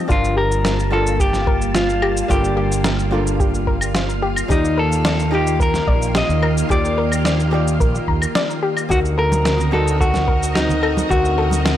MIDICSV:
0, 0, Header, 1, 7, 480
1, 0, Start_track
1, 0, Key_signature, -2, "minor"
1, 0, Tempo, 550459
1, 83, Time_signature, 4, 2, 24, 8
1, 10263, End_track
2, 0, Start_track
2, 0, Title_t, "Clean electric guitar"
2, 0, Program_c, 0, 27
2, 101, Note_on_c, 0, 65, 96
2, 316, Note_off_c, 0, 65, 0
2, 328, Note_on_c, 0, 70, 109
2, 808, Note_off_c, 0, 70, 0
2, 812, Note_on_c, 0, 69, 102
2, 1052, Note_off_c, 0, 69, 0
2, 1055, Note_on_c, 0, 67, 96
2, 1531, Note_on_c, 0, 65, 90
2, 1543, Note_off_c, 0, 67, 0
2, 2011, Note_on_c, 0, 67, 91
2, 2021, Note_off_c, 0, 65, 0
2, 3412, Note_off_c, 0, 67, 0
2, 3938, Note_on_c, 0, 63, 89
2, 4177, Note_off_c, 0, 63, 0
2, 4180, Note_on_c, 0, 69, 102
2, 4660, Note_off_c, 0, 69, 0
2, 4663, Note_on_c, 0, 67, 90
2, 4900, Note_off_c, 0, 67, 0
2, 4905, Note_on_c, 0, 70, 108
2, 5381, Note_off_c, 0, 70, 0
2, 5385, Note_on_c, 0, 75, 103
2, 5852, Note_off_c, 0, 75, 0
2, 5856, Note_on_c, 0, 74, 99
2, 7254, Note_off_c, 0, 74, 0
2, 7773, Note_on_c, 0, 66, 97
2, 7836, Note_off_c, 0, 66, 0
2, 8011, Note_on_c, 0, 70, 114
2, 8483, Note_off_c, 0, 70, 0
2, 8486, Note_on_c, 0, 69, 100
2, 8722, Note_off_c, 0, 69, 0
2, 8726, Note_on_c, 0, 66, 109
2, 9200, Note_on_c, 0, 63, 99
2, 9219, Note_off_c, 0, 66, 0
2, 9684, Note_on_c, 0, 66, 90
2, 9696, Note_off_c, 0, 63, 0
2, 10263, Note_off_c, 0, 66, 0
2, 10263, End_track
3, 0, Start_track
3, 0, Title_t, "Synth arpeggio sound"
3, 0, Program_c, 1, 84
3, 81, Note_on_c, 1, 65, 101
3, 298, Note_off_c, 1, 65, 0
3, 321, Note_on_c, 1, 67, 96
3, 550, Note_off_c, 1, 67, 0
3, 562, Note_on_c, 1, 70, 72
3, 694, Note_off_c, 1, 70, 0
3, 803, Note_on_c, 1, 65, 73
3, 1019, Note_off_c, 1, 65, 0
3, 1044, Note_on_c, 1, 67, 88
3, 1272, Note_off_c, 1, 67, 0
3, 1283, Note_on_c, 1, 70, 102
3, 1499, Note_off_c, 1, 70, 0
3, 1524, Note_on_c, 1, 65, 79
3, 1740, Note_off_c, 1, 65, 0
3, 1765, Note_on_c, 1, 67, 108
3, 1980, Note_off_c, 1, 67, 0
3, 2002, Note_on_c, 1, 65, 98
3, 2219, Note_off_c, 1, 65, 0
3, 2240, Note_on_c, 1, 67, 99
3, 2469, Note_off_c, 1, 67, 0
3, 2481, Note_on_c, 1, 70, 78
3, 2614, Note_off_c, 1, 70, 0
3, 2723, Note_on_c, 1, 65, 81
3, 2939, Note_off_c, 1, 65, 0
3, 2963, Note_on_c, 1, 67, 82
3, 3191, Note_off_c, 1, 67, 0
3, 3202, Note_on_c, 1, 70, 96
3, 3419, Note_off_c, 1, 70, 0
3, 3444, Note_on_c, 1, 65, 81
3, 3660, Note_off_c, 1, 65, 0
3, 3683, Note_on_c, 1, 67, 101
3, 3899, Note_off_c, 1, 67, 0
3, 3923, Note_on_c, 1, 67, 99
3, 4139, Note_off_c, 1, 67, 0
3, 4164, Note_on_c, 1, 70, 99
3, 4391, Note_off_c, 1, 70, 0
3, 4402, Note_on_c, 1, 74, 76
3, 4534, Note_off_c, 1, 74, 0
3, 4643, Note_on_c, 1, 67, 77
3, 4859, Note_off_c, 1, 67, 0
3, 4882, Note_on_c, 1, 70, 82
3, 5110, Note_off_c, 1, 70, 0
3, 5123, Note_on_c, 1, 74, 103
3, 5339, Note_off_c, 1, 74, 0
3, 5363, Note_on_c, 1, 67, 84
3, 5579, Note_off_c, 1, 67, 0
3, 5605, Note_on_c, 1, 70, 102
3, 5820, Note_off_c, 1, 70, 0
3, 5845, Note_on_c, 1, 67, 101
3, 6060, Note_off_c, 1, 67, 0
3, 6085, Note_on_c, 1, 70, 102
3, 6312, Note_off_c, 1, 70, 0
3, 6326, Note_on_c, 1, 74, 77
3, 6456, Note_off_c, 1, 74, 0
3, 6563, Note_on_c, 1, 67, 76
3, 6780, Note_off_c, 1, 67, 0
3, 6804, Note_on_c, 1, 70, 90
3, 7032, Note_off_c, 1, 70, 0
3, 7046, Note_on_c, 1, 82, 75
3, 7261, Note_off_c, 1, 82, 0
3, 7284, Note_on_c, 1, 74, 112
3, 7511, Note_off_c, 1, 74, 0
3, 7522, Note_on_c, 1, 67, 105
3, 7739, Note_off_c, 1, 67, 0
3, 7761, Note_on_c, 1, 66, 99
3, 7978, Note_off_c, 1, 66, 0
3, 8002, Note_on_c, 1, 69, 104
3, 8231, Note_off_c, 1, 69, 0
3, 8244, Note_on_c, 1, 70, 72
3, 8375, Note_off_c, 1, 70, 0
3, 8483, Note_on_c, 1, 66, 79
3, 8699, Note_off_c, 1, 66, 0
3, 8724, Note_on_c, 1, 69, 87
3, 8952, Note_off_c, 1, 69, 0
3, 8961, Note_on_c, 1, 70, 98
3, 9178, Note_off_c, 1, 70, 0
3, 9202, Note_on_c, 1, 66, 85
3, 9419, Note_off_c, 1, 66, 0
3, 9442, Note_on_c, 1, 69, 105
3, 9659, Note_off_c, 1, 69, 0
3, 9682, Note_on_c, 1, 66, 94
3, 9899, Note_off_c, 1, 66, 0
3, 9923, Note_on_c, 1, 69, 101
3, 10151, Note_off_c, 1, 69, 0
3, 10161, Note_on_c, 1, 70, 79
3, 10263, Note_off_c, 1, 70, 0
3, 10263, End_track
4, 0, Start_track
4, 0, Title_t, "String machine"
4, 0, Program_c, 2, 50
4, 84, Note_on_c, 2, 81, 76
4, 86, Note_on_c, 2, 55, 90
4, 88, Note_on_c, 2, 65, 75
4, 89, Note_on_c, 2, 77, 81
4, 90, Note_on_c, 2, 58, 96
4, 3888, Note_off_c, 2, 81, 0
4, 3889, Note_off_c, 2, 55, 0
4, 3891, Note_off_c, 2, 58, 0
4, 3920, Note_on_c, 2, 58, 77
4, 3920, Note_on_c, 2, 67, 100
4, 3921, Note_on_c, 2, 51, 88
4, 7726, Note_off_c, 2, 58, 0
4, 7727, Note_off_c, 2, 51, 0
4, 7727, Note_off_c, 2, 67, 0
4, 7731, Note_off_c, 2, 65, 0
4, 7731, Note_off_c, 2, 77, 0
4, 7754, Note_on_c, 2, 70, 92
4, 7757, Note_on_c, 2, 66, 81
4, 7757, Note_on_c, 2, 75, 85
4, 7759, Note_on_c, 2, 60, 82
4, 10263, Note_off_c, 2, 60, 0
4, 10263, Note_off_c, 2, 66, 0
4, 10263, Note_off_c, 2, 70, 0
4, 10263, Note_off_c, 2, 75, 0
4, 10263, End_track
5, 0, Start_track
5, 0, Title_t, "Hollow-body jazz guitar"
5, 0, Program_c, 3, 26
5, 67, Note_on_c, 3, 55, 94
5, 73, Note_on_c, 3, 62, 85
5, 79, Note_on_c, 3, 65, 84
5, 87, Note_on_c, 3, 81, 84
5, 94, Note_on_c, 3, 70, 97
5, 766, Note_off_c, 3, 55, 0
5, 770, Note_off_c, 3, 62, 0
5, 773, Note_off_c, 3, 65, 0
5, 777, Note_off_c, 3, 81, 0
5, 780, Note_off_c, 3, 70, 0
5, 789, Note_on_c, 3, 55, 85
5, 796, Note_on_c, 3, 62, 76
5, 801, Note_on_c, 3, 65, 81
5, 807, Note_on_c, 3, 69, 74
5, 817, Note_on_c, 3, 70, 96
5, 1968, Note_off_c, 3, 55, 0
5, 1971, Note_off_c, 3, 62, 0
5, 1974, Note_off_c, 3, 65, 0
5, 1977, Note_off_c, 3, 69, 0
5, 1981, Note_off_c, 3, 70, 0
5, 1990, Note_on_c, 3, 55, 94
5, 1997, Note_on_c, 3, 62, 88
5, 2005, Note_on_c, 3, 65, 85
5, 2013, Note_on_c, 3, 69, 82
5, 2017, Note_on_c, 3, 70, 95
5, 2688, Note_off_c, 3, 55, 0
5, 2692, Note_off_c, 3, 62, 0
5, 2695, Note_off_c, 3, 65, 0
5, 2699, Note_off_c, 3, 69, 0
5, 2702, Note_off_c, 3, 70, 0
5, 2709, Note_on_c, 3, 55, 87
5, 2715, Note_on_c, 3, 62, 80
5, 2724, Note_on_c, 3, 65, 81
5, 2728, Note_on_c, 3, 69, 77
5, 2737, Note_on_c, 3, 70, 95
5, 3887, Note_off_c, 3, 55, 0
5, 3891, Note_off_c, 3, 62, 0
5, 3895, Note_off_c, 3, 65, 0
5, 3897, Note_off_c, 3, 69, 0
5, 3901, Note_off_c, 3, 70, 0
5, 3908, Note_on_c, 3, 51, 91
5, 3914, Note_on_c, 3, 63, 86
5, 3923, Note_on_c, 3, 65, 89
5, 3929, Note_on_c, 3, 67, 86
5, 3934, Note_on_c, 3, 74, 100
5, 4607, Note_off_c, 3, 51, 0
5, 4610, Note_off_c, 3, 63, 0
5, 4614, Note_off_c, 3, 65, 0
5, 4617, Note_off_c, 3, 67, 0
5, 4620, Note_off_c, 3, 74, 0
5, 4627, Note_on_c, 3, 51, 91
5, 4633, Note_on_c, 3, 63, 85
5, 4639, Note_on_c, 3, 65, 83
5, 4645, Note_on_c, 3, 67, 78
5, 4654, Note_on_c, 3, 75, 102
5, 5807, Note_off_c, 3, 51, 0
5, 5809, Note_off_c, 3, 63, 0
5, 5813, Note_off_c, 3, 65, 0
5, 5816, Note_off_c, 3, 67, 0
5, 5820, Note_off_c, 3, 75, 0
5, 5832, Note_on_c, 3, 51, 98
5, 5838, Note_on_c, 3, 63, 83
5, 5843, Note_on_c, 3, 65, 80
5, 5851, Note_on_c, 3, 67, 89
5, 5859, Note_on_c, 3, 74, 102
5, 6529, Note_off_c, 3, 51, 0
5, 6532, Note_off_c, 3, 63, 0
5, 6535, Note_off_c, 3, 65, 0
5, 6539, Note_off_c, 3, 67, 0
5, 6543, Note_off_c, 3, 74, 0
5, 6549, Note_on_c, 3, 51, 92
5, 6556, Note_on_c, 3, 63, 82
5, 6564, Note_on_c, 3, 65, 83
5, 6567, Note_on_c, 3, 67, 82
5, 6574, Note_on_c, 3, 74, 97
5, 7727, Note_off_c, 3, 51, 0
5, 7731, Note_off_c, 3, 63, 0
5, 7735, Note_off_c, 3, 65, 0
5, 7737, Note_off_c, 3, 67, 0
5, 7740, Note_off_c, 3, 74, 0
5, 7749, Note_on_c, 3, 50, 94
5, 7756, Note_on_c, 3, 60, 82
5, 7763, Note_on_c, 3, 63, 82
5, 7768, Note_on_c, 3, 66, 81
5, 7775, Note_on_c, 3, 70, 104
5, 8448, Note_off_c, 3, 50, 0
5, 8451, Note_off_c, 3, 60, 0
5, 8454, Note_off_c, 3, 63, 0
5, 8457, Note_off_c, 3, 66, 0
5, 8461, Note_off_c, 3, 70, 0
5, 8468, Note_on_c, 3, 50, 90
5, 8476, Note_on_c, 3, 60, 78
5, 8483, Note_on_c, 3, 63, 84
5, 8489, Note_on_c, 3, 66, 85
5, 8496, Note_on_c, 3, 70, 94
5, 9647, Note_off_c, 3, 50, 0
5, 9651, Note_off_c, 3, 60, 0
5, 9655, Note_off_c, 3, 63, 0
5, 9658, Note_off_c, 3, 66, 0
5, 9661, Note_off_c, 3, 70, 0
5, 9670, Note_on_c, 3, 50, 98
5, 9677, Note_on_c, 3, 60, 85
5, 9686, Note_on_c, 3, 63, 91
5, 9691, Note_on_c, 3, 66, 82
5, 9698, Note_on_c, 3, 70, 108
5, 10263, Note_off_c, 3, 50, 0
5, 10263, Note_off_c, 3, 60, 0
5, 10263, Note_off_c, 3, 63, 0
5, 10263, Note_off_c, 3, 66, 0
5, 10263, Note_off_c, 3, 70, 0
5, 10263, End_track
6, 0, Start_track
6, 0, Title_t, "Fretless electric bass"
6, 0, Program_c, 4, 35
6, 85, Note_on_c, 4, 31, 100
6, 1931, Note_off_c, 4, 31, 0
6, 2004, Note_on_c, 4, 31, 101
6, 3850, Note_off_c, 4, 31, 0
6, 3921, Note_on_c, 4, 39, 104
6, 5049, Note_off_c, 4, 39, 0
6, 5123, Note_on_c, 4, 34, 87
6, 5409, Note_off_c, 4, 34, 0
6, 5484, Note_on_c, 4, 39, 81
6, 5769, Note_off_c, 4, 39, 0
6, 5845, Note_on_c, 4, 39, 107
6, 6799, Note_off_c, 4, 39, 0
6, 6804, Note_on_c, 4, 34, 98
6, 6952, Note_off_c, 4, 34, 0
6, 7044, Note_on_c, 4, 39, 88
6, 7192, Note_off_c, 4, 39, 0
6, 7763, Note_on_c, 4, 38, 109
6, 9610, Note_off_c, 4, 38, 0
6, 9685, Note_on_c, 4, 38, 106
6, 10263, Note_off_c, 4, 38, 0
6, 10263, End_track
7, 0, Start_track
7, 0, Title_t, "Drums"
7, 83, Note_on_c, 9, 36, 125
7, 88, Note_on_c, 9, 82, 55
7, 170, Note_off_c, 9, 36, 0
7, 175, Note_off_c, 9, 82, 0
7, 212, Note_on_c, 9, 82, 35
7, 299, Note_off_c, 9, 82, 0
7, 451, Note_on_c, 9, 82, 68
7, 538, Note_off_c, 9, 82, 0
7, 564, Note_on_c, 9, 38, 103
7, 571, Note_on_c, 9, 82, 56
7, 651, Note_off_c, 9, 38, 0
7, 658, Note_off_c, 9, 82, 0
7, 692, Note_on_c, 9, 82, 33
7, 779, Note_off_c, 9, 82, 0
7, 930, Note_on_c, 9, 82, 67
7, 1017, Note_off_c, 9, 82, 0
7, 1043, Note_on_c, 9, 36, 121
7, 1049, Note_on_c, 9, 82, 59
7, 1131, Note_off_c, 9, 36, 0
7, 1136, Note_off_c, 9, 82, 0
7, 1163, Note_on_c, 9, 38, 30
7, 1169, Note_on_c, 9, 82, 33
7, 1250, Note_off_c, 9, 38, 0
7, 1256, Note_off_c, 9, 82, 0
7, 1284, Note_on_c, 9, 36, 104
7, 1371, Note_off_c, 9, 36, 0
7, 1409, Note_on_c, 9, 82, 61
7, 1497, Note_off_c, 9, 82, 0
7, 1522, Note_on_c, 9, 38, 96
7, 1529, Note_on_c, 9, 82, 52
7, 1609, Note_off_c, 9, 38, 0
7, 1616, Note_off_c, 9, 82, 0
7, 1651, Note_on_c, 9, 82, 32
7, 1738, Note_off_c, 9, 82, 0
7, 1763, Note_on_c, 9, 75, 78
7, 1850, Note_off_c, 9, 75, 0
7, 1891, Note_on_c, 9, 82, 68
7, 1978, Note_off_c, 9, 82, 0
7, 2004, Note_on_c, 9, 36, 127
7, 2009, Note_on_c, 9, 82, 55
7, 2091, Note_off_c, 9, 36, 0
7, 2096, Note_off_c, 9, 82, 0
7, 2130, Note_on_c, 9, 82, 36
7, 2217, Note_off_c, 9, 82, 0
7, 2371, Note_on_c, 9, 82, 69
7, 2458, Note_off_c, 9, 82, 0
7, 2480, Note_on_c, 9, 38, 107
7, 2486, Note_on_c, 9, 82, 58
7, 2567, Note_off_c, 9, 38, 0
7, 2573, Note_off_c, 9, 82, 0
7, 2609, Note_on_c, 9, 82, 35
7, 2696, Note_off_c, 9, 82, 0
7, 2850, Note_on_c, 9, 82, 68
7, 2938, Note_off_c, 9, 82, 0
7, 2963, Note_on_c, 9, 36, 119
7, 2968, Note_on_c, 9, 82, 62
7, 3050, Note_off_c, 9, 36, 0
7, 3055, Note_off_c, 9, 82, 0
7, 3090, Note_on_c, 9, 82, 34
7, 3177, Note_off_c, 9, 82, 0
7, 3203, Note_on_c, 9, 36, 68
7, 3290, Note_off_c, 9, 36, 0
7, 3323, Note_on_c, 9, 75, 77
7, 3330, Note_on_c, 9, 82, 71
7, 3410, Note_off_c, 9, 75, 0
7, 3417, Note_off_c, 9, 82, 0
7, 3441, Note_on_c, 9, 38, 94
7, 3448, Note_on_c, 9, 82, 53
7, 3528, Note_off_c, 9, 38, 0
7, 3535, Note_off_c, 9, 82, 0
7, 3570, Note_on_c, 9, 82, 34
7, 3658, Note_off_c, 9, 82, 0
7, 3806, Note_on_c, 9, 75, 82
7, 3812, Note_on_c, 9, 82, 67
7, 3893, Note_off_c, 9, 75, 0
7, 3899, Note_off_c, 9, 82, 0
7, 3923, Note_on_c, 9, 36, 127
7, 3928, Note_on_c, 9, 82, 57
7, 4010, Note_off_c, 9, 36, 0
7, 4015, Note_off_c, 9, 82, 0
7, 4052, Note_on_c, 9, 82, 36
7, 4139, Note_off_c, 9, 82, 0
7, 4291, Note_on_c, 9, 82, 68
7, 4378, Note_off_c, 9, 82, 0
7, 4402, Note_on_c, 9, 38, 110
7, 4409, Note_on_c, 9, 82, 62
7, 4489, Note_off_c, 9, 38, 0
7, 4496, Note_off_c, 9, 82, 0
7, 4531, Note_on_c, 9, 82, 36
7, 4618, Note_off_c, 9, 82, 0
7, 4770, Note_on_c, 9, 82, 71
7, 4857, Note_off_c, 9, 82, 0
7, 4883, Note_on_c, 9, 36, 119
7, 4889, Note_on_c, 9, 82, 63
7, 4970, Note_off_c, 9, 36, 0
7, 4976, Note_off_c, 9, 82, 0
7, 5005, Note_on_c, 9, 38, 31
7, 5012, Note_on_c, 9, 82, 35
7, 5093, Note_off_c, 9, 38, 0
7, 5099, Note_off_c, 9, 82, 0
7, 5123, Note_on_c, 9, 36, 120
7, 5210, Note_off_c, 9, 36, 0
7, 5250, Note_on_c, 9, 82, 71
7, 5337, Note_off_c, 9, 82, 0
7, 5361, Note_on_c, 9, 38, 99
7, 5368, Note_on_c, 9, 82, 53
7, 5449, Note_off_c, 9, 38, 0
7, 5455, Note_off_c, 9, 82, 0
7, 5492, Note_on_c, 9, 82, 35
7, 5579, Note_off_c, 9, 82, 0
7, 5603, Note_on_c, 9, 75, 73
7, 5690, Note_off_c, 9, 75, 0
7, 5733, Note_on_c, 9, 82, 70
7, 5821, Note_off_c, 9, 82, 0
7, 5844, Note_on_c, 9, 36, 125
7, 5850, Note_on_c, 9, 82, 58
7, 5931, Note_off_c, 9, 36, 0
7, 5937, Note_off_c, 9, 82, 0
7, 5972, Note_on_c, 9, 82, 33
7, 6059, Note_off_c, 9, 82, 0
7, 6206, Note_on_c, 9, 75, 57
7, 6213, Note_on_c, 9, 82, 71
7, 6293, Note_off_c, 9, 75, 0
7, 6300, Note_off_c, 9, 82, 0
7, 6323, Note_on_c, 9, 38, 101
7, 6330, Note_on_c, 9, 82, 59
7, 6410, Note_off_c, 9, 38, 0
7, 6417, Note_off_c, 9, 82, 0
7, 6452, Note_on_c, 9, 82, 36
7, 6539, Note_off_c, 9, 82, 0
7, 6693, Note_on_c, 9, 82, 68
7, 6780, Note_off_c, 9, 82, 0
7, 6803, Note_on_c, 9, 36, 127
7, 6808, Note_on_c, 9, 82, 61
7, 6890, Note_off_c, 9, 36, 0
7, 6895, Note_off_c, 9, 82, 0
7, 6933, Note_on_c, 9, 82, 34
7, 7021, Note_off_c, 9, 82, 0
7, 7043, Note_on_c, 9, 36, 64
7, 7131, Note_off_c, 9, 36, 0
7, 7165, Note_on_c, 9, 75, 73
7, 7172, Note_on_c, 9, 82, 72
7, 7253, Note_off_c, 9, 75, 0
7, 7259, Note_off_c, 9, 82, 0
7, 7284, Note_on_c, 9, 38, 98
7, 7290, Note_on_c, 9, 82, 52
7, 7371, Note_off_c, 9, 38, 0
7, 7377, Note_off_c, 9, 82, 0
7, 7414, Note_on_c, 9, 82, 33
7, 7502, Note_off_c, 9, 82, 0
7, 7644, Note_on_c, 9, 75, 70
7, 7651, Note_on_c, 9, 82, 63
7, 7732, Note_off_c, 9, 75, 0
7, 7738, Note_off_c, 9, 82, 0
7, 7763, Note_on_c, 9, 36, 118
7, 7770, Note_on_c, 9, 82, 55
7, 7851, Note_off_c, 9, 36, 0
7, 7858, Note_off_c, 9, 82, 0
7, 7894, Note_on_c, 9, 82, 34
7, 7981, Note_off_c, 9, 82, 0
7, 8126, Note_on_c, 9, 63, 95
7, 8133, Note_on_c, 9, 82, 66
7, 8213, Note_off_c, 9, 63, 0
7, 8220, Note_off_c, 9, 82, 0
7, 8244, Note_on_c, 9, 38, 99
7, 8250, Note_on_c, 9, 82, 59
7, 8331, Note_off_c, 9, 38, 0
7, 8338, Note_off_c, 9, 82, 0
7, 8359, Note_on_c, 9, 64, 69
7, 8373, Note_on_c, 9, 82, 33
7, 8446, Note_off_c, 9, 64, 0
7, 8460, Note_off_c, 9, 82, 0
7, 8478, Note_on_c, 9, 63, 63
7, 8565, Note_off_c, 9, 63, 0
7, 8611, Note_on_c, 9, 82, 66
7, 8698, Note_off_c, 9, 82, 0
7, 8724, Note_on_c, 9, 36, 119
7, 8732, Note_on_c, 9, 82, 56
7, 8812, Note_off_c, 9, 36, 0
7, 8819, Note_off_c, 9, 82, 0
7, 8842, Note_on_c, 9, 63, 88
7, 8846, Note_on_c, 9, 38, 29
7, 8852, Note_on_c, 9, 82, 33
7, 8929, Note_off_c, 9, 63, 0
7, 8933, Note_off_c, 9, 38, 0
7, 8940, Note_off_c, 9, 82, 0
7, 8964, Note_on_c, 9, 36, 108
7, 9052, Note_off_c, 9, 36, 0
7, 9094, Note_on_c, 9, 82, 65
7, 9181, Note_off_c, 9, 82, 0
7, 9204, Note_on_c, 9, 38, 94
7, 9204, Note_on_c, 9, 63, 62
7, 9210, Note_on_c, 9, 82, 56
7, 9291, Note_off_c, 9, 38, 0
7, 9291, Note_off_c, 9, 63, 0
7, 9297, Note_off_c, 9, 82, 0
7, 9326, Note_on_c, 9, 64, 84
7, 9333, Note_on_c, 9, 82, 35
7, 9413, Note_off_c, 9, 64, 0
7, 9420, Note_off_c, 9, 82, 0
7, 9444, Note_on_c, 9, 75, 69
7, 9531, Note_off_c, 9, 75, 0
7, 9567, Note_on_c, 9, 63, 101
7, 9573, Note_on_c, 9, 82, 63
7, 9654, Note_off_c, 9, 63, 0
7, 9660, Note_off_c, 9, 82, 0
7, 9685, Note_on_c, 9, 36, 124
7, 9690, Note_on_c, 9, 82, 54
7, 9772, Note_off_c, 9, 36, 0
7, 9777, Note_off_c, 9, 82, 0
7, 9810, Note_on_c, 9, 82, 33
7, 9897, Note_off_c, 9, 82, 0
7, 10038, Note_on_c, 9, 63, 92
7, 10050, Note_on_c, 9, 82, 65
7, 10125, Note_off_c, 9, 63, 0
7, 10138, Note_off_c, 9, 82, 0
7, 10164, Note_on_c, 9, 38, 99
7, 10171, Note_on_c, 9, 82, 57
7, 10251, Note_off_c, 9, 38, 0
7, 10258, Note_off_c, 9, 82, 0
7, 10263, End_track
0, 0, End_of_file